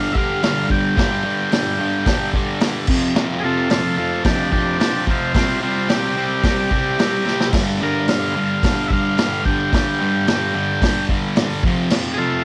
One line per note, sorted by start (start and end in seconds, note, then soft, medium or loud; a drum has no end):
0.00 0.13 G2 loud
0.00 0.14 D3 loud
0.00 0.14 G3 loud
0.00 0.14 F5 medium
0.12 0.41 G2 medium
0.12 0.42 D3 medium
0.12 0.43 G3 loud
0.12 0.16 E5 medium
0.12 kick medium
0.18 0.69 F5 loud
0.42 0.68 G2 medium
0.42 0.69 D3 loud
0.42 0.69 G3 loud
0.42 snare loud
0.42 open hi-hat medium
0.70 0.95 G2 medium
0.70 0.96 D3 loud
0.70 0.97 G3 loud
0.70 2.30 G5 medium
0.70 kick medium
0.97 1.22 G2 loud
0.97 1.23 D3 loud
0.97 1.24 G3 loud
0.97 kick loud
0.97 snare loud
0.97 open hi-hat medium
1.24 1.50 G2 loud
1.24 1.51 D3 medium
1.24 1.51 G3 loud
1.51 1.78 G2 medium
1.51 1.78 D3 medium
1.51 1.78 G3 loud
1.51 snare loud
1.51 open hi-hat medium
1.79 2.05 G2 medium
1.79 2.06 D3 medium
1.79 2.06 G3 medium
2.06 2.33 G2 medium
2.06 2.33 D3 loud
2.06 2.34 G3 loud
2.06 kick loud
2.06 snare loud
2.06 open hi-hat medium
2.33 2.60 G2 medium
2.33 2.60 D3 medium
2.33 2.61 G3 loud
2.33 kick medium
2.60 2.87 G2 medium
2.60 2.87 D3 medium
2.60 2.87 G3 loud
2.60 snare loud
2.60 open hi-hat medium
2.87 3.15 F2 loud
2.87 3.15 C3 loud
2.87 3.16 F3 loud
2.87 kick loud
2.87 crash loud
3.16 3.43 F2 loud
3.16 3.44 C3 loud
3.16 3.44 F3 loud
3.16 snare loud
3.40 3.43 G#4 medium
3.44 3.71 F2 medium
3.44 3.71 C3 loud
3.44 3.72 F3 loud
3.44 3.69 F4 medium
3.44 3.70 A4 loud
3.70 3.98 F2 medium
3.70 3.98 C3 medium
3.70 3.98 F3 medium
3.70 3.96 F4 medium
3.70 3.96 A4 loud
3.70 snare loud
3.70 open hi-hat medium
3.97 4.24 F2 medium
3.97 4.25 C3 medium
3.97 4.25 F3 medium
3.97 4.23 F4 medium
3.97 4.24 A4 loud
4.24 4.51 F2 loud
4.24 4.51 C3 loud
4.24 4.52 F3 loud
4.24 4.50 D4 medium
4.24 4.52 G4 medium
4.24 kick loud
4.24 snare loud
4.24 open hi-hat medium
4.52 4.80 F2 medium
4.52 4.80 C3 medium
4.52 4.81 F3 loud
4.52 4.78 D4 medium
4.52 4.79 G4 medium
4.52 kick medium
4.80 5.06 F2 medium
4.80 5.07 C3 medium
4.80 5.08 F3 medium
4.80 5.05 D4 medium
4.80 5.06 G4 medium
4.80 snare loud
4.80 open hi-hat medium
5.07 5.33 F2 medium
5.07 5.33 C3 loud
5.07 5.34 F3 loud
5.07 5.33 C4 medium
5.07 5.34 F4 medium
5.07 kick medium
5.34 5.61 C3 loud
5.34 5.62 G3 loud
5.34 5.60 C4 medium
5.34 5.62 C4 loud
5.34 5.61 F4 loud
5.34 kick loud
5.34 snare loud
5.34 open hi-hat medium
5.62 5.88 C3 loud
5.62 5.89 G3 loud
5.62 5.89 C4 loud
5.62 5.88 C4 medium
5.62 5.89 F4 medium
5.88 6.15 C3 medium
5.88 6.17 G3 medium
5.88 6.16 C4 medium
5.88 7.49 G4 loud
5.88 snare loud
5.88 open hi-hat medium
6.16 6.42 C3 medium
6.16 6.44 G3 medium
6.16 6.43 C4 loud
6.43 6.70 C3 medium
6.43 6.72 G3 loud
6.43 6.71 C4 loud
6.43 kick loud
6.43 snare loud
6.43 open hi-hat medium
6.71 6.97 C3 medium
6.71 6.99 G3 loud
6.71 6.98 C4 loud
6.71 kick medium
6.98 7.24 C3 medium
6.98 7.26 G3 medium
6.98 7.25 C4 loud
6.98 snare loud
6.98 open hi-hat medium
7.25 7.51 C3 medium
7.25 7.54 G3 loud
7.25 7.52 C4 medium
7.25 snare medium
7.41 snare loud
7.53 7.80 G2 medium
7.53 7.80 D3 loud
7.53 7.82 G3 loud
7.53 kick loud
7.53 snare loud
7.53 open hi-hat medium
7.53 crash loud
7.81 8.08 G2 loud
7.81 8.08 D3 loud
7.81 8.09 G3 loud
7.81 8.08 A#4 loud
8.08 8.35 G2 medium
8.08 8.36 D3 medium
8.08 8.36 G3 loud
8.08 8.88 F5 medium
8.08 snare loud
8.08 open hi-hat medium
8.36 8.62 G2 medium
8.36 8.63 D3 medium
8.36 8.64 G3 loud
8.63 8.91 G2 medium
8.63 8.92 D3 medium
8.63 8.92 G3 loud
8.63 kick loud
8.63 snare loud
8.63 open hi-hat medium
8.88 8.91 E5 medium
8.88 kick medium
8.92 9.18 G2 medium
8.92 9.18 D3 medium
8.92 9.19 G3 loud
8.92 9.45 F5 loud
9.18 9.44 G2 medium
9.18 9.45 D3 loud
9.18 9.45 G3 loud
9.18 snare loud
9.18 open hi-hat medium
9.45 9.71 G2 medium
9.45 9.72 D3 medium
9.45 9.73 G3 loud
9.45 11.05 G5 medium
9.45 kick medium
9.73 9.99 G2 loud
9.73 10.00 D3 loud
9.73 10.00 G3 loud
9.73 kick loud
9.73 snare loud
9.73 open hi-hat medium
10.00 10.26 G2 loud
10.00 10.27 D3 medium
10.00 10.27 G3 loud
10.27 10.53 G2 medium
10.27 10.54 D3 medium
10.27 10.54 G3 medium
10.27 snare loud
10.27 open hi-hat medium
10.54 10.81 G2 medium
10.54 10.81 D3 loud
10.54 10.82 G3 medium
10.82 11.08 G2 medium
10.82 11.08 D3 loud
10.82 11.09 G3 loud
10.82 kick loud
10.82 snare loud
10.82 open hi-hat medium
11.09 11.36 G2 medium
11.09 11.37 D3 loud
11.09 11.37 G3 loud
11.09 kick medium
11.36 11.63 G2 medium
11.36 11.63 D3 loud
11.36 11.63 G3 loud
11.36 snare loud
11.36 open hi-hat medium
11.63 11.90 F2 loud
11.63 11.90 C3 loud
11.63 11.91 F3 loud
11.63 kick loud
11.90 12.17 F2 loud
11.90 12.18 C3 loud
11.90 12.18 F3 loud
11.90 snare loud
11.90 crash loud
12.14 12.17 G#4 medium
12.18 12.44 F2 medium
12.18 12.44 C3 medium
12.18 12.44 F3 loud
12.18 12.44 F4 medium
12.18 12.44 A4 medium